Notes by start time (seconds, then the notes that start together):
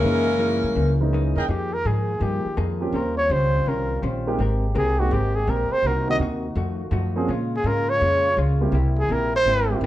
Already playing: C#3 E3 G#3 A#3 C#4 E4 A#4
0.03 F#2 E3 G#3 A#3 C#4 D#4
0.39 F#2 E3 A#3 D#4
0.63 G2
0.75 C#2 F#2 E3 A#3 D#4
1.00 E3 G#3 A#3 C#4 D#4
1.13 F#2 E3 A#3 D#4
1.36 E2 G#4 A#4 D#5 G5
1.48 F2 D#3 F3 G#3 A#3 D#4 F4 G4 G#4
1.73 A#4
1.85 G#2 F3 A#3 D#4 G#4
2.20 G2 F3 A#3 D#4 G4 G#4
2.45 muted upright bass stroke
2.57 F2 F3 A#3 D#4 G#4
2.81 F3 A#3 C4 C#4 G4
2.92 D#2 D#3 G3 C4 C#4 F4 G4 A#4 C5
3.17 C#5
3.30 C#2 D#3 C#4 G4 C5
3.66 C2 D#3 C#4 G4 A#4 C5
4.02 A#1 D#3 C#4 G4 C5
4.27 G#3 A#3 C4 D#4 G4
4.38 G#1 C3 G#3 A#3 C4 G4 A#4
4.75 C2 G#3 C4 G4 G#4 A#4
4.98 G#3 A#3 C4 D#4 F#4 G4
5.11 G#1 G#3 C4 G4 A#4
5.35 G#4
5.47 A#1 G#3 C4 G4 A#4
5.71 C5, muted upright bass stroke
5.83 C2 C3 A#3 D#4 F#4
5.87 D#4 F#4 A#4
6.08 D#3 A#3 C4 D4 F#4 D#5
6.19 D#2 C3 A#3 D#4 F#4
6.55 F2 D#3 F3 A3 D#4 F4 F#4
6.91 F#2 F3 A3 D#4 F#4
7.16 F3 A#3 C4 C#4 G#4
7.28 A#2 C#3 G#3 A#3 C#4 F4
7.56 G#4
7.64 G#2 A#2 G#3 C#4 F4 A#4
7.89 C#5
8.01 F2 A#2 G#3 C#4 F4
8.37 C#2 A#2 G#3 C#4 F4
8.61 G3 A#3 C4 E4 G4
8.72 C2 C3 G3 A#3 E4 G4
8.99 G#4
9.09 A#1 C3 A#3 E4 G4
9.13 A#4
9.36 C5
9.46 G#1 C3 A#3 E4 G4
9.70 G3 A#3 C4 E4 G4
9.81 G1 C3